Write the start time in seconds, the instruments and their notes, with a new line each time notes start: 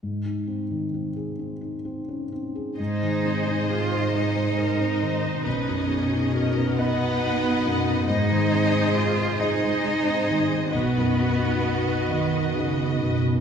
0.03 felt piano G#2
0.26 felt piano D#4
0.48 felt piano C4
0.71 felt piano D#3
0.94 felt piano C4
1.16 felt piano G#4
1.39 felt piano C4
1.61 felt piano D#4
1.85 felt piano C4
2.08 felt piano C#4
2.32 felt piano C4
2.55 felt piano G#4
2.78 cello section G#2, felt piano G#2, cello D#4, viola section G#4 C5, violin section C5 D#5
3.03 felt piano D#3
3.25 felt piano C4
3.47 felt piano D#4
3.70 cello F4, felt piano G#4
3.92 felt piano C5
4.14 cello D#4, viola section D#4 G#4, felt piano D#5
4.36 felt piano C5
4.58 felt piano D#4, viola section A#4
4.80 felt piano C4
5.02 felt piano D#3, viola section C5
5.24 felt piano C4
5.45 felt piano B1, cello section B2, cello C#4, viola section B4, violin section D#5
5.68 felt piano F#2
5.90 felt piano B3, viola section G#4
6.13 felt piano D#4
6.33 felt piano F#4, viola section A#4
6.56 felt piano B4
6.77 cello B3, viola section D#4 B4, violin section D#5 F#5, felt piano D#5
6.99 felt piano B4
7.22 felt piano D#4
7.44 felt piano B3
7.66 felt piano F#2
7.88 felt piano B3
8.07 cello section G#2, felt piano G#2, cello D#4, viola section G#4 C5, violin section D#5
8.31 felt piano D#3
8.54 felt piano C4
8.74 felt piano D#4
8.96 cello F4, felt piano G#4
9.18 felt piano C5
9.39 cello D#4, viola section G#4 C5, violin section D#5, felt piano D#5
9.63 felt piano C5
9.85 felt piano D#4
10.07 felt piano C4
10.30 felt piano D#3
10.52 felt piano C4
10.72 felt piano B1, cello section B2, cello B3, viola section F#4 B4, violin section D#5
10.97 felt piano F#2
11.19 felt piano B3
11.43 felt piano D#4
11.65 felt piano F#4
11.88 felt piano B4
12.09 cello section D#3, felt piano D#5
12.34 felt piano B4
12.55 cello section C#3, felt piano D#4
12.79 felt piano B3
13.00 felt piano F#2, cello section B2
13.24 felt piano B3